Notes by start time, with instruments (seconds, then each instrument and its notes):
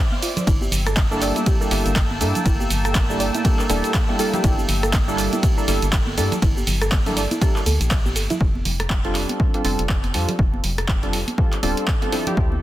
Already playing: analog synth pad C5 D5 E5 D6
0.12 synth arpeggio sound F5, high conga
0.22 synth arpeggio sound F4, open hi-hat, shaker
0.37 closed hi-hat, low conga, shaker
0.47 fm bass G1, analog synth pad A#3 G5 A5 E6, synth arpeggio sound E4, kick, closed hi-hat, ride, shaker
0.61 synth arpeggio sound G4, high conga, shaker
0.71 fm bass G1, open hi-hat, low conga, shaker
0.87 synth arpeggio sound A4, cross-stick, closed hi-hat, shaker
0.96 kick, clap, closed hi-hat, ride, high conga, shaker
1.11 synth keys G3 A#3 D4 E4 A4, shaker
1.21 synth arpeggio sound D5, clap, open hi-hat, shaker
1.36 synth arpeggio sound E4, closed hi-hat, high conga, shaker
1.46 synth arpeggio sound G4, kick, closed hi-hat, ride, shaker
1.61 synth keys G3 A#3 D4 E4 A4, synth arpeggio sound A#4, shaker
1.71 fm bass G1, synth keys G3 A#3 D4 E4 A4, open hi-hat, high conga, shaker
1.86 fm bass G1, closed hi-hat, shaker
1.96 kick, cross-stick, clap, closed hi-hat, ride, shaker
2.11 high conga
2.21 fm bass G2, synth keys G3 A#3 D4 E4 A4, synth arpeggio sound A4, open hi-hat, shaker
2.35 closed hi-hat, low conga, shaker
2.46 fm bass G1, synth arpeggio sound E4, kick, closed hi-hat, ride, shaker
2.60 synth arpeggio sound G4, high conga, shaker
2.70 fm bass G1, open hi-hat, low conga, shaker
2.85 synth arpeggio sound A4, cross-stick, closed hi-hat, shaker
2.95 kick, clap, closed hi-hat, ride, high conga, shaker
3.10 synth keys G3 A#3 D4 E4 A4, shaker
3.20 synth arpeggio sound D5, open hi-hat, shaker
3.34 synth arpeggio sound E4, closed hi-hat, high conga, shaker
3.45 synth keys G3 A#3 D4 E4 A4, synth arpeggio sound G4, kick, closed hi-hat, ride, shaker
3.59 synth arpeggio sound A#4, clap, shaker
3.69 fm bass E1, synth keys G3 A#3 D4 E4 A4, open hi-hat, high conga, shaker
3.84 closed hi-hat, shaker
3.94 kick, cross-stick, clap, closed hi-hat, ride, shaker
4.09 synth keys G3 A#3 D4 E4 A4, high conga
4.19 synth keys G3 A#3 D4 E4 A4, synth arpeggio sound A4, open hi-hat, shaker
4.33 synth keys G3 A#3 D4 E4 G4, closed hi-hat, low conga, shaker
4.44 fm bass G1, synth arpeggio sound E4, kick, closed hi-hat, ride, shaker
4.58 synth arpeggio sound G4, high conga, shaker
4.68 fm bass G1, open hi-hat, low conga, shaker
4.83 synth arpeggio sound A4, cross-stick, closed hi-hat, shaker
4.93 kick, clap, closed hi-hat, ride, high conga, shaker
5.08 synth keys G3 A#3 D4 E4 A4, shaker
5.18 synth arpeggio sound D5, clap, open hi-hat, shaker
5.33 synth arpeggio sound E4, closed hi-hat, high conga, shaker
5.43 synth arpeggio sound G4, kick, closed hi-hat, ride, shaker
5.57 synth keys G3 A#3 D4 E4 A4, synth arpeggio sound A#4, shaker
5.68 fm bass G1, synth keys G3 A#3 D4 E4 A4, open hi-hat, high conga, shaker
5.82 fm bass G1, closed hi-hat, shaker
5.93 kick, cross-stick, clap, closed hi-hat, ride, shaker
6.07 high conga
6.17 fm bass G2, synth keys G3 A#3 D4 E4 A4, synth arpeggio sound A4, open hi-hat, shaker
6.32 closed hi-hat, low conga, shaker
6.42 fm bass G1, synth arpeggio sound E4, kick, closed hi-hat, ride, shaker
6.57 synth arpeggio sound G4, high conga, shaker
6.67 fm bass G1, open hi-hat, low conga, shaker
6.82 synth arpeggio sound A4, cross-stick, closed hi-hat, shaker
6.92 kick, clap, closed hi-hat, ride, high conga, shaker
7.06 synth keys G3 A#3 D4 E4 A4, open hi-hat, low conga, shaker
7.17 synth arpeggio sound D5, open hi-hat, shaker
7.31 synth arpeggio sound E4, closed hi-hat, high conga, shaker
7.41 synth keys G3 A#3 D4 E4 A4, synth arpeggio sound G4, kick, closed hi-hat, ride, shaker
7.56 synth arpeggio sound A#4, clap, shaker
7.66 fm bass D2, synth arpeggio sound A4, open hi-hat, high conga, shaker
7.81 fm bass A#1, closed hi-hat, shaker
7.91 synth arpeggio sound E5, kick, cross-stick, clap, closed hi-hat, ride, shaker
8.06 synth arpeggio sound G4, high conga, shaker
8.16 fm bass G1, synth arpeggio sound A4, open hi-hat, shaker
8.30 synth arpeggio sound E4, closed hi-hat, low conga, shaker
8.41 fm bass F1, kick
8.55 high conga
8.65 fm bass F1, open hi-hat, low conga
8.80 cross-stick, closed hi-hat
8.89 kick, clap, high conga
9.05 synth keys G3 C4 D4 F4 A4, closed hi-hat
9.15 clap, open hi-hat
9.29 closed hi-hat, high conga
9.40 kick
9.54 synth keys G3 C4 D4 F4 A4, closed hi-hat
9.64 fm bass F1, synth keys G3 C4 D4 F4 A4, open hi-hat, high conga
9.79 fm bass F1, closed hi-hat
9.89 kick, cross-stick, clap
10.04 closed hi-hat, high conga
10.14 fm bass F2, synth keys G3 C4 D4 F4 A4, open hi-hat
10.28 closed hi-hat, low conga
10.39 fm bass F1, kick
10.54 high conga
10.63 fm bass F1, open hi-hat, low conga
10.78 cross-stick, closed hi-hat
10.88 kick, clap, high conga
11.03 synth keys G3 C4 D4 F4 A4, closed hi-hat
11.13 open hi-hat
11.28 closed hi-hat, high conga
11.38 synth keys G3 C4 D4 F4 A4, kick
11.53 clap, closed hi-hat
11.63 fm bass D1, synth keys G3 C4 D4 F4 A4, open hi-hat, high conga
11.77 closed hi-hat
11.88 kick, cross-stick, clap
12.02 synth keys G3 C4 D4 F4 A4, closed hi-hat, high conga
12.12 synth keys F3 C4 D4 E4 A4, open hi-hat
12.27 synth keys F3 C4 D4 E4 G4, closed hi-hat, low conga
12.37 fm bass D2, kick
12.52 high conga